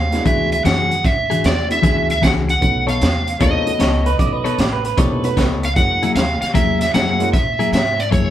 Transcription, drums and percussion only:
0.12 snare, closed hi-hat
0.26 kick, closed hi-hat
0.52 closed hi-hat
0.65 snare, closed hi-hat
0.91 closed hi-hat
1.05 kick, snare, closed hi-hat
1.31 closed hi-hat
1.44 snare, closed hi-hat
1.71 closed hi-hat
1.83 kick, snare, closed hi-hat
2.10 closed hi-hat
2.23 kick, snare, closed hi-hat
2.49 closed hi-hat
2.62 kick, closed hi-hat
2.88 closed hi-hat
3.01 snare, closed hi-hat
3.27 closed hi-hat
3.40 kick, snare, closed hi-hat
3.67 closed hi-hat
3.80 snare, closed hi-hat
4.06 closed hi-hat
4.19 kick, closed hi-hat
4.46 closed hi-hat
4.58 snare, closed hi-hat
4.85 closed hi-hat
4.98 kick, snare, closed hi-hat
5.24 closed hi-hat
5.37 kick, snare, closed hi-hat
5.63 closed hi-hat
5.76 kick, snare, closed hi-hat
6.03 closed hi-hat
6.16 snare, closed hi-hat
6.42 snare, closed hi-hat
6.55 kick, snare, closed hi-hat
6.81 snare, closed hi-hat
6.94 snare, closed hi-hat
7.20 closed hi-hat
7.34 kick, snare, closed hi-hat
7.60 closed hi-hat
7.73 snare, closed hi-hat
8.00 closed hi-hat
8.12 kick, closed hi-hat

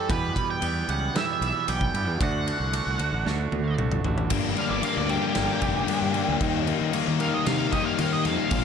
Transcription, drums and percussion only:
0.10 kick, ride
0.36 kick, ride
0.62 ride
0.89 ride
1.16 snare, ride
1.42 ride
1.68 ride
1.81 kick
1.95 ride
2.21 kick, ride
2.48 ride
2.73 ride
2.99 ride
3.27 snare
3.52 high tom
3.78 mid tom
3.92 mid tom
4.04 floor tom
4.18 floor tom
4.30 kick, crash
4.57 crash
4.83 crash
5.09 crash
5.35 snare, crash
5.62 kick, crash
5.88 crash
6.14 crash
6.41 kick, crash
6.67 crash
6.93 crash
7.20 crash
7.46 snare, crash
7.72 kick, crash
7.98 crash
8.25 snare, crash
8.51 kick, crash

